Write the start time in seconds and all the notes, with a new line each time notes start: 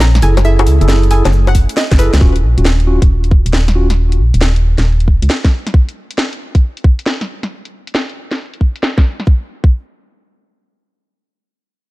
Already playing: A#1 C4 C#4 F5 G#5
0.00 A#5, snare, cabasa
0.15 snare, closed hi-hat, cabasa
0.22 F#1 A3 E4 G#4 A4 G#5, open hi-hat, cabasa
0.37 snare, closed hi-hat, high bongo, cabasa
0.45 E4 G#4 A4 E5, cabasa
0.59 closed hi-hat, high bongo, cabasa
0.67 C#2, open hi-hat, cabasa
0.81 F#1 E4 G#4 A4, closed hi-hat, cabasa
0.89 snare, cabasa
1.03 closed hi-hat, cabasa
1.11 E4 G#4 A4 G#5, open hi-hat, cabasa
1.25 F#1, snare, closed hi-hat, high bongo, cabasa
1.33 cabasa
1.47 F#5, closed hi-hat, high bongo, cabasa
1.55 kick, open hi-hat, cabasa
1.69 closed hi-hat, cabasa
1.77 D#5, snare, cabasa
1.92 F#1, kick, snare, closed hi-hat, cabasa
1.99 E4 G#4 A4 B4, open hi-hat, cabasa
2.14 C#2, snare, closed hi-hat, cabasa
2.21 D#1 C#4 F4 F#4, kick
2.36 closed hi-hat
2.43 A#1
2.58 D#1 C#4 F4 F#4, closed hi-hat
2.65 snare
2.80 closed hi-hat
2.87 C#4 F4 F#4
3.02 D#1, kick, closed hi-hat
3.24 closed hi-hat
3.31 kick
3.46 D#1, closed hi-hat
3.53 snare
3.68 snare, closed hi-hat
3.75 C#4 F4 F#4
3.90 snare, closed hi-hat
4.12 closed hi-hat
4.19 A#1
4.34 D#1, closed hi-hat
4.41 snare
4.56 closed hi-hat
4.78 D#1, snare, closed hi-hat
5.00 closed hi-hat
5.08 kick
5.22 C#2, closed hi-hat
5.30 snare
5.45 kick, snare, closed hi-hat
5.67 snare, closed hi-hat
5.74 kick
5.89 closed hi-hat
6.11 closed hi-hat
6.18 snare
6.33 closed hi-hat
6.55 kick, closed hi-hat
6.77 closed hi-hat
6.84 kick
6.99 closed hi-hat
7.06 snare
7.21 snare, closed hi-hat
7.43 snare, closed hi-hat
7.65 closed hi-hat
7.87 closed hi-hat
7.95 snare
8.09 closed hi-hat
8.31 snare, closed hi-hat
8.54 closed hi-hat
8.61 kick
8.76 closed hi-hat
8.83 snare
8.98 kick, snare, closed hi-hat
9.20 snare, closed hi-hat
9.27 kick
9.64 kick